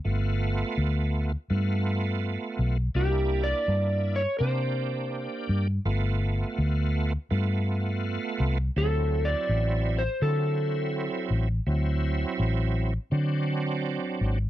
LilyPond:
<<
  \new Staff \with { instrumentName = "Electric slide guitar" } { \time 4/4 \key g \mixolydian \tempo 4 = 83 r1 | \tuplet 3/2 { g'4 d''8~ d''4 cis''8 } c''4. r8 | r1 | \tuplet 3/2 { a'4 d''8~ d''4 c''8 } a'4. r8 |
r1 | }
  \new Staff \with { instrumentName = "Tonewheel organ" } { \time 4/4 \key g \mixolydian <a b f'>4.~ <a b f'>16 r16 <a b f'>4.~ <a b f'>16 r16 | <bes d' e'>4.~ <bes d' e'>16 r16 <bes d' g'>4.~ <bes d' g'>16 r16 | <a b f'>4.~ <a b f'>16 r16 <a b f'>4.~ <a b f'>16 r16 | <fis c' e'>4.~ <fis c' e'>16 r16 <fis c' e'>4.~ <fis c' e'>16 r16 |
<fis c' e'>4.~ <fis c' e'>16 r16 <fis c' d'>4.~ <fis c' d'>16 r16 | }
  \new Staff \with { instrumentName = "Fingered electric bass" } { \clef bass \time 4/4 \key g \mixolydian g,,4 d,4 g,4. b,,8 | c,4 g,4 c4. g,8 | g,,4 d,4 g,4. c,8 | d,4 a,,4 d4. a,,8 |
d,4 a,,4 d4. aes,,8 | }
>>